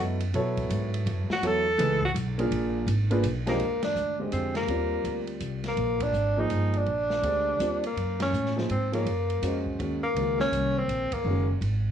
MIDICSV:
0, 0, Header, 1, 6, 480
1, 0, Start_track
1, 0, Tempo, 363636
1, 454, Time_signature, 3, 2, 24, 8
1, 15728, End_track
2, 0, Start_track
2, 0, Title_t, "Grand piano"
2, 0, Program_c, 0, 0
2, 0, Note_on_c, 0, 54, 60
2, 0, Note_on_c, 0, 59, 62
2, 0, Note_on_c, 0, 64, 55
2, 0, Note_on_c, 0, 69, 60
2, 0, Note_on_c, 0, 75, 67
2, 244, Note_off_c, 0, 54, 0
2, 249, Note_off_c, 0, 59, 0
2, 254, Note_off_c, 0, 64, 0
2, 254, Note_off_c, 0, 69, 0
2, 256, Note_off_c, 0, 75, 0
2, 449, Note_on_c, 0, 54, 74
2, 455, Note_on_c, 0, 59, 75
2, 464, Note_on_c, 0, 64, 76
2, 466, Note_on_c, 0, 69, 82
2, 472, Note_on_c, 0, 73, 92
2, 1779, Note_off_c, 0, 54, 0
2, 1782, Note_off_c, 0, 59, 0
2, 1786, Note_off_c, 0, 64, 0
2, 1788, Note_off_c, 0, 69, 0
2, 1790, Note_off_c, 0, 73, 0
2, 1884, Note_on_c, 0, 54, 75
2, 1886, Note_on_c, 0, 59, 66
2, 1893, Note_on_c, 0, 64, 72
2, 1899, Note_on_c, 0, 69, 71
2, 1905, Note_on_c, 0, 73, 83
2, 2158, Note_off_c, 0, 54, 0
2, 2159, Note_off_c, 0, 59, 0
2, 2163, Note_off_c, 0, 64, 0
2, 2165, Note_off_c, 0, 69, 0
2, 2168, Note_off_c, 0, 73, 0
2, 2355, Note_on_c, 0, 52, 84
2, 2361, Note_on_c, 0, 57, 65
2, 2364, Note_on_c, 0, 63, 73
2, 2375, Note_on_c, 0, 68, 75
2, 2377, Note_on_c, 0, 71, 88
2, 2632, Note_off_c, 0, 52, 0
2, 2635, Note_off_c, 0, 57, 0
2, 2637, Note_off_c, 0, 63, 0
2, 2642, Note_off_c, 0, 68, 0
2, 2643, Note_off_c, 0, 71, 0
2, 3140, Note_on_c, 0, 58, 91
2, 3145, Note_on_c, 0, 62, 84
2, 3159, Note_on_c, 0, 65, 79
2, 3162, Note_on_c, 0, 68, 84
2, 3170, Note_on_c, 0, 70, 91
2, 3758, Note_off_c, 0, 58, 0
2, 3761, Note_off_c, 0, 62, 0
2, 3768, Note_off_c, 0, 65, 0
2, 3769, Note_off_c, 0, 68, 0
2, 3773, Note_off_c, 0, 70, 0
2, 4097, Note_on_c, 0, 62, 90
2, 4098, Note_on_c, 0, 58, 93
2, 4107, Note_on_c, 0, 65, 86
2, 4117, Note_on_c, 0, 68, 75
2, 4118, Note_on_c, 0, 71, 101
2, 4255, Note_off_c, 0, 58, 0
2, 4255, Note_off_c, 0, 62, 0
2, 4260, Note_off_c, 0, 65, 0
2, 4265, Note_off_c, 0, 68, 0
2, 4265, Note_off_c, 0, 71, 0
2, 4574, Note_on_c, 0, 41, 77
2, 4575, Note_on_c, 0, 56, 73
2, 4582, Note_on_c, 0, 62, 75
2, 4590, Note_on_c, 0, 72, 77
2, 4591, Note_on_c, 0, 67, 77
2, 4598, Note_on_c, 0, 75, 92
2, 4733, Note_off_c, 0, 41, 0
2, 4733, Note_off_c, 0, 56, 0
2, 4736, Note_off_c, 0, 62, 0
2, 4740, Note_off_c, 0, 72, 0
2, 4741, Note_off_c, 0, 67, 0
2, 4745, Note_off_c, 0, 75, 0
2, 5535, Note_on_c, 0, 56, 58
2, 5539, Note_on_c, 0, 50, 54
2, 5547, Note_on_c, 0, 67, 55
2, 5552, Note_on_c, 0, 72, 53
2, 5561, Note_on_c, 0, 75, 63
2, 6154, Note_off_c, 0, 56, 0
2, 6156, Note_off_c, 0, 50, 0
2, 6160, Note_off_c, 0, 67, 0
2, 6163, Note_off_c, 0, 72, 0
2, 6167, Note_off_c, 0, 75, 0
2, 6189, Note_on_c, 0, 55, 57
2, 6195, Note_on_c, 0, 60, 57
2, 6197, Note_on_c, 0, 65, 53
2, 6204, Note_on_c, 0, 70, 52
2, 6210, Note_on_c, 0, 74, 63
2, 7525, Note_off_c, 0, 55, 0
2, 7528, Note_off_c, 0, 60, 0
2, 7529, Note_off_c, 0, 65, 0
2, 7532, Note_off_c, 0, 70, 0
2, 7535, Note_off_c, 0, 74, 0
2, 8411, Note_on_c, 0, 53, 69
2, 8418, Note_on_c, 0, 58, 63
2, 8425, Note_on_c, 0, 63, 62
2, 8430, Note_on_c, 0, 68, 65
2, 8434, Note_on_c, 0, 72, 69
2, 9034, Note_off_c, 0, 53, 0
2, 9038, Note_off_c, 0, 58, 0
2, 9041, Note_off_c, 0, 63, 0
2, 9044, Note_off_c, 0, 68, 0
2, 9046, Note_off_c, 0, 72, 0
2, 9555, Note_on_c, 0, 50, 59
2, 9555, Note_on_c, 0, 56, 61
2, 9561, Note_on_c, 0, 67, 50
2, 9567, Note_on_c, 0, 72, 58
2, 9574, Note_on_c, 0, 74, 65
2, 10017, Note_off_c, 0, 50, 0
2, 10018, Note_off_c, 0, 56, 0
2, 10021, Note_off_c, 0, 67, 0
2, 10023, Note_off_c, 0, 72, 0
2, 10027, Note_off_c, 0, 74, 0
2, 10034, Note_on_c, 0, 55, 57
2, 10041, Note_on_c, 0, 60, 50
2, 10042, Note_on_c, 0, 65, 47
2, 10051, Note_on_c, 0, 70, 45
2, 10059, Note_on_c, 0, 72, 53
2, 10309, Note_off_c, 0, 55, 0
2, 10313, Note_off_c, 0, 60, 0
2, 10313, Note_off_c, 0, 65, 0
2, 10318, Note_off_c, 0, 70, 0
2, 10322, Note_off_c, 0, 72, 0
2, 11304, Note_on_c, 0, 53, 63
2, 11308, Note_on_c, 0, 58, 52
2, 11319, Note_on_c, 0, 63, 57
2, 11321, Note_on_c, 0, 68, 55
2, 11328, Note_on_c, 0, 72, 66
2, 11461, Note_off_c, 0, 53, 0
2, 11463, Note_off_c, 0, 58, 0
2, 11469, Note_off_c, 0, 63, 0
2, 11470, Note_off_c, 0, 68, 0
2, 11473, Note_off_c, 0, 72, 0
2, 11777, Note_on_c, 0, 53, 58
2, 11778, Note_on_c, 0, 58, 55
2, 11787, Note_on_c, 0, 63, 57
2, 11791, Note_on_c, 0, 68, 56
2, 11801, Note_on_c, 0, 73, 70
2, 11938, Note_off_c, 0, 53, 0
2, 11939, Note_off_c, 0, 58, 0
2, 11944, Note_off_c, 0, 63, 0
2, 11945, Note_off_c, 0, 68, 0
2, 11950, Note_off_c, 0, 73, 0
2, 12440, Note_on_c, 0, 56, 56
2, 12443, Note_on_c, 0, 61, 51
2, 12451, Note_on_c, 0, 66, 59
2, 12462, Note_on_c, 0, 72, 55
2, 12465, Note_on_c, 0, 75, 61
2, 12905, Note_off_c, 0, 56, 0
2, 12907, Note_off_c, 0, 61, 0
2, 12911, Note_off_c, 0, 66, 0
2, 12916, Note_off_c, 0, 72, 0
2, 12917, Note_off_c, 0, 75, 0
2, 12924, Note_on_c, 0, 51, 53
2, 12926, Note_on_c, 0, 56, 51
2, 12933, Note_on_c, 0, 61, 50
2, 12937, Note_on_c, 0, 66, 52
2, 12946, Note_on_c, 0, 70, 55
2, 13199, Note_off_c, 0, 51, 0
2, 13201, Note_off_c, 0, 56, 0
2, 13204, Note_off_c, 0, 61, 0
2, 13206, Note_off_c, 0, 66, 0
2, 13210, Note_off_c, 0, 70, 0
2, 13419, Note_on_c, 0, 51, 57
2, 13421, Note_on_c, 0, 56, 52
2, 13427, Note_on_c, 0, 58, 53
2, 13436, Note_on_c, 0, 66, 47
2, 13442, Note_on_c, 0, 70, 64
2, 14753, Note_off_c, 0, 51, 0
2, 14754, Note_off_c, 0, 56, 0
2, 14757, Note_off_c, 0, 58, 0
2, 14762, Note_off_c, 0, 66, 0
2, 14765, Note_off_c, 0, 70, 0
2, 14862, Note_on_c, 0, 51, 66
2, 14866, Note_on_c, 0, 56, 55
2, 14871, Note_on_c, 0, 61, 59
2, 14875, Note_on_c, 0, 66, 56
2, 14885, Note_on_c, 0, 70, 66
2, 15133, Note_off_c, 0, 51, 0
2, 15135, Note_off_c, 0, 56, 0
2, 15137, Note_off_c, 0, 61, 0
2, 15139, Note_off_c, 0, 66, 0
2, 15144, Note_off_c, 0, 70, 0
2, 15728, End_track
3, 0, Start_track
3, 0, Title_t, "Tenor saxophone"
3, 0, Program_c, 1, 66
3, 1746, Note_on_c, 1, 66, 108
3, 1943, Note_on_c, 1, 69, 126
3, 1963, Note_off_c, 1, 66, 0
3, 2695, Note_off_c, 1, 69, 0
3, 2703, Note_on_c, 1, 66, 110
3, 2796, Note_off_c, 1, 66, 0
3, 4597, Note_on_c, 1, 58, 90
3, 5033, Note_off_c, 1, 58, 0
3, 5069, Note_on_c, 1, 62, 88
3, 5508, Note_off_c, 1, 62, 0
3, 5714, Note_on_c, 1, 60, 68
3, 5996, Note_off_c, 1, 60, 0
3, 6023, Note_on_c, 1, 58, 74
3, 6926, Note_off_c, 1, 58, 0
3, 7497, Note_on_c, 1, 58, 85
3, 7960, Note_on_c, 1, 62, 98
3, 7980, Note_off_c, 1, 58, 0
3, 8443, Note_on_c, 1, 63, 91
3, 8463, Note_off_c, 1, 62, 0
3, 8944, Note_on_c, 1, 62, 85
3, 8964, Note_off_c, 1, 63, 0
3, 10363, Note_off_c, 1, 62, 0
3, 10383, Note_on_c, 1, 58, 75
3, 10811, Note_off_c, 1, 58, 0
3, 10851, Note_on_c, 1, 61, 84
3, 11285, Note_off_c, 1, 61, 0
3, 11497, Note_on_c, 1, 60, 75
3, 11773, Note_off_c, 1, 60, 0
3, 11804, Note_on_c, 1, 58, 72
3, 12705, Note_off_c, 1, 58, 0
3, 13243, Note_on_c, 1, 58, 76
3, 13685, Note_off_c, 1, 58, 0
3, 13735, Note_on_c, 1, 61, 95
3, 14233, Note_on_c, 1, 60, 90
3, 14253, Note_off_c, 1, 61, 0
3, 14700, Note_on_c, 1, 58, 80
3, 14720, Note_off_c, 1, 60, 0
3, 15170, Note_off_c, 1, 58, 0
3, 15728, End_track
4, 0, Start_track
4, 0, Title_t, "Upright bass"
4, 0, Program_c, 2, 32
4, 0, Note_on_c, 2, 42, 96
4, 429, Note_off_c, 2, 42, 0
4, 441, Note_on_c, 2, 47, 84
4, 910, Note_off_c, 2, 47, 0
4, 920, Note_on_c, 2, 44, 92
4, 1388, Note_off_c, 2, 44, 0
4, 1398, Note_on_c, 2, 42, 101
4, 1685, Note_off_c, 2, 42, 0
4, 1876, Note_on_c, 2, 40, 90
4, 2340, Note_off_c, 2, 40, 0
4, 2348, Note_on_c, 2, 37, 93
4, 2818, Note_off_c, 2, 37, 0
4, 2829, Note_on_c, 2, 35, 104
4, 3298, Note_off_c, 2, 35, 0
4, 3310, Note_on_c, 2, 34, 86
4, 3772, Note_off_c, 2, 34, 0
4, 3780, Note_on_c, 2, 32, 99
4, 4251, Note_off_c, 2, 32, 0
4, 4265, Note_on_c, 2, 35, 96
4, 4733, Note_off_c, 2, 35, 0
4, 4749, Note_on_c, 2, 39, 63
4, 5209, Note_off_c, 2, 39, 0
4, 5217, Note_on_c, 2, 38, 79
4, 5688, Note_off_c, 2, 38, 0
4, 5706, Note_on_c, 2, 41, 79
4, 6161, Note_off_c, 2, 41, 0
4, 6169, Note_on_c, 2, 39, 77
4, 6644, Note_off_c, 2, 39, 0
4, 6653, Note_on_c, 2, 38, 83
4, 7127, Note_off_c, 2, 38, 0
4, 7137, Note_on_c, 2, 36, 74
4, 7603, Note_off_c, 2, 36, 0
4, 7611, Note_on_c, 2, 34, 84
4, 8083, Note_off_c, 2, 34, 0
4, 8091, Note_on_c, 2, 32, 78
4, 8567, Note_off_c, 2, 32, 0
4, 8589, Note_on_c, 2, 31, 84
4, 9049, Note_off_c, 2, 31, 0
4, 9057, Note_on_c, 2, 34, 73
4, 9525, Note_off_c, 2, 34, 0
4, 9533, Note_on_c, 2, 38, 79
4, 10009, Note_off_c, 2, 38, 0
4, 10018, Note_on_c, 2, 39, 80
4, 10492, Note_off_c, 2, 39, 0
4, 10506, Note_on_c, 2, 42, 78
4, 10977, Note_off_c, 2, 42, 0
4, 10988, Note_on_c, 2, 45, 79
4, 11459, Note_off_c, 2, 45, 0
4, 11480, Note_on_c, 2, 44, 86
4, 11937, Note_off_c, 2, 44, 0
4, 11945, Note_on_c, 2, 42, 82
4, 12419, Note_off_c, 2, 42, 0
4, 12433, Note_on_c, 2, 41, 88
4, 12904, Note_off_c, 2, 41, 0
4, 12922, Note_on_c, 2, 39, 85
4, 13381, Note_off_c, 2, 39, 0
4, 13389, Note_on_c, 2, 37, 78
4, 13864, Note_off_c, 2, 37, 0
4, 13873, Note_on_c, 2, 36, 85
4, 14347, Note_off_c, 2, 36, 0
4, 14360, Note_on_c, 2, 34, 80
4, 14650, Note_off_c, 2, 34, 0
4, 14839, Note_on_c, 2, 30, 80
4, 15313, Note_off_c, 2, 30, 0
4, 15325, Note_on_c, 2, 32, 89
4, 15728, Note_off_c, 2, 32, 0
4, 15728, End_track
5, 0, Start_track
5, 0, Title_t, "Muted upright bass strokes"
5, 1700, Note_on_c, 9, 29, 46
5, 1832, Note_off_c, 9, 29, 0
5, 14676, Note_on_c, 9, 29, 34
5, 14808, Note_off_c, 9, 29, 0
5, 15728, End_track
6, 0, Start_track
6, 0, Title_t, "Drums"
6, 272, Note_on_c, 9, 51, 57
6, 404, Note_off_c, 9, 51, 0
6, 449, Note_on_c, 9, 51, 60
6, 581, Note_off_c, 9, 51, 0
6, 756, Note_on_c, 9, 36, 76
6, 757, Note_on_c, 9, 51, 58
6, 888, Note_off_c, 9, 36, 0
6, 889, Note_off_c, 9, 51, 0
6, 930, Note_on_c, 9, 44, 55
6, 930, Note_on_c, 9, 51, 73
6, 1062, Note_off_c, 9, 44, 0
6, 1062, Note_off_c, 9, 51, 0
6, 1240, Note_on_c, 9, 51, 59
6, 1372, Note_off_c, 9, 51, 0
6, 1408, Note_on_c, 9, 51, 58
6, 1540, Note_off_c, 9, 51, 0
6, 1716, Note_on_c, 9, 38, 67
6, 1848, Note_off_c, 9, 38, 0
6, 1889, Note_on_c, 9, 51, 75
6, 2021, Note_off_c, 9, 51, 0
6, 2364, Note_on_c, 9, 44, 58
6, 2364, Note_on_c, 9, 51, 93
6, 2496, Note_off_c, 9, 44, 0
6, 2496, Note_off_c, 9, 51, 0
6, 2669, Note_on_c, 9, 36, 65
6, 2801, Note_off_c, 9, 36, 0
6, 2849, Note_on_c, 9, 44, 67
6, 2849, Note_on_c, 9, 51, 77
6, 2981, Note_off_c, 9, 44, 0
6, 2981, Note_off_c, 9, 51, 0
6, 3153, Note_on_c, 9, 51, 61
6, 3285, Note_off_c, 9, 51, 0
6, 3323, Note_on_c, 9, 51, 76
6, 3455, Note_off_c, 9, 51, 0
6, 3797, Note_on_c, 9, 44, 64
6, 3797, Note_on_c, 9, 51, 83
6, 3929, Note_off_c, 9, 44, 0
6, 3929, Note_off_c, 9, 51, 0
6, 4101, Note_on_c, 9, 51, 56
6, 4233, Note_off_c, 9, 51, 0
6, 4270, Note_on_c, 9, 44, 59
6, 4270, Note_on_c, 9, 51, 82
6, 4402, Note_off_c, 9, 44, 0
6, 4402, Note_off_c, 9, 51, 0
6, 4580, Note_on_c, 9, 51, 62
6, 4582, Note_on_c, 9, 38, 74
6, 4712, Note_off_c, 9, 51, 0
6, 4714, Note_off_c, 9, 38, 0
6, 4746, Note_on_c, 9, 51, 57
6, 4878, Note_off_c, 9, 51, 0
6, 5050, Note_on_c, 9, 51, 65
6, 5053, Note_on_c, 9, 38, 77
6, 5182, Note_off_c, 9, 51, 0
6, 5185, Note_off_c, 9, 38, 0
6, 5227, Note_on_c, 9, 44, 55
6, 5359, Note_off_c, 9, 44, 0
6, 5702, Note_on_c, 9, 44, 47
6, 5702, Note_on_c, 9, 51, 50
6, 5834, Note_off_c, 9, 44, 0
6, 5834, Note_off_c, 9, 51, 0
6, 6006, Note_on_c, 9, 51, 48
6, 6008, Note_on_c, 9, 38, 59
6, 6138, Note_off_c, 9, 51, 0
6, 6140, Note_off_c, 9, 38, 0
6, 6182, Note_on_c, 9, 51, 61
6, 6314, Note_off_c, 9, 51, 0
6, 6662, Note_on_c, 9, 44, 54
6, 6662, Note_on_c, 9, 51, 55
6, 6794, Note_off_c, 9, 44, 0
6, 6794, Note_off_c, 9, 51, 0
6, 6961, Note_on_c, 9, 51, 40
6, 7093, Note_off_c, 9, 51, 0
6, 7134, Note_on_c, 9, 44, 42
6, 7134, Note_on_c, 9, 51, 53
6, 7266, Note_off_c, 9, 44, 0
6, 7266, Note_off_c, 9, 51, 0
6, 7443, Note_on_c, 9, 51, 48
6, 7445, Note_on_c, 9, 38, 37
6, 7575, Note_off_c, 9, 51, 0
6, 7577, Note_off_c, 9, 38, 0
6, 7618, Note_on_c, 9, 51, 52
6, 7750, Note_off_c, 9, 51, 0
6, 7926, Note_on_c, 9, 51, 76
6, 7928, Note_on_c, 9, 36, 79
6, 8058, Note_off_c, 9, 51, 0
6, 8060, Note_off_c, 9, 36, 0
6, 8099, Note_on_c, 9, 44, 47
6, 8231, Note_off_c, 9, 44, 0
6, 8580, Note_on_c, 9, 44, 41
6, 8580, Note_on_c, 9, 51, 55
6, 8712, Note_off_c, 9, 44, 0
6, 8712, Note_off_c, 9, 51, 0
6, 8891, Note_on_c, 9, 51, 43
6, 9023, Note_off_c, 9, 51, 0
6, 9060, Note_on_c, 9, 51, 54
6, 9192, Note_off_c, 9, 51, 0
6, 9374, Note_on_c, 9, 38, 43
6, 9506, Note_off_c, 9, 38, 0
6, 9548, Note_on_c, 9, 51, 55
6, 9680, Note_off_c, 9, 51, 0
6, 10032, Note_on_c, 9, 44, 52
6, 10032, Note_on_c, 9, 51, 50
6, 10164, Note_off_c, 9, 44, 0
6, 10164, Note_off_c, 9, 51, 0
6, 10343, Note_on_c, 9, 51, 44
6, 10475, Note_off_c, 9, 51, 0
6, 10524, Note_on_c, 9, 51, 53
6, 10656, Note_off_c, 9, 51, 0
6, 10823, Note_on_c, 9, 51, 62
6, 10825, Note_on_c, 9, 38, 71
6, 10955, Note_off_c, 9, 51, 0
6, 10957, Note_off_c, 9, 38, 0
6, 11003, Note_on_c, 9, 44, 58
6, 11135, Note_off_c, 9, 44, 0
6, 11162, Note_on_c, 9, 38, 22
6, 11294, Note_off_c, 9, 38, 0
6, 11321, Note_on_c, 9, 38, 35
6, 11453, Note_off_c, 9, 38, 0
6, 11476, Note_on_c, 9, 44, 45
6, 11476, Note_on_c, 9, 51, 61
6, 11608, Note_off_c, 9, 44, 0
6, 11608, Note_off_c, 9, 51, 0
6, 11790, Note_on_c, 9, 51, 46
6, 11922, Note_off_c, 9, 51, 0
6, 11964, Note_on_c, 9, 51, 55
6, 12096, Note_off_c, 9, 51, 0
6, 12272, Note_on_c, 9, 51, 43
6, 12404, Note_off_c, 9, 51, 0
6, 12441, Note_on_c, 9, 44, 56
6, 12441, Note_on_c, 9, 51, 68
6, 12573, Note_off_c, 9, 44, 0
6, 12573, Note_off_c, 9, 51, 0
6, 12750, Note_on_c, 9, 36, 48
6, 12882, Note_off_c, 9, 36, 0
6, 12933, Note_on_c, 9, 51, 50
6, 13065, Note_off_c, 9, 51, 0
6, 13418, Note_on_c, 9, 51, 55
6, 13550, Note_off_c, 9, 51, 0
6, 13724, Note_on_c, 9, 38, 54
6, 13856, Note_off_c, 9, 38, 0
6, 13898, Note_on_c, 9, 44, 50
6, 13898, Note_on_c, 9, 51, 58
6, 14030, Note_off_c, 9, 44, 0
6, 14030, Note_off_c, 9, 51, 0
6, 14376, Note_on_c, 9, 44, 41
6, 14376, Note_on_c, 9, 51, 58
6, 14508, Note_off_c, 9, 44, 0
6, 14508, Note_off_c, 9, 51, 0
6, 14676, Note_on_c, 9, 51, 75
6, 14680, Note_on_c, 9, 36, 82
6, 14808, Note_off_c, 9, 51, 0
6, 14812, Note_off_c, 9, 36, 0
6, 15337, Note_on_c, 9, 51, 54
6, 15469, Note_off_c, 9, 51, 0
6, 15728, End_track
0, 0, End_of_file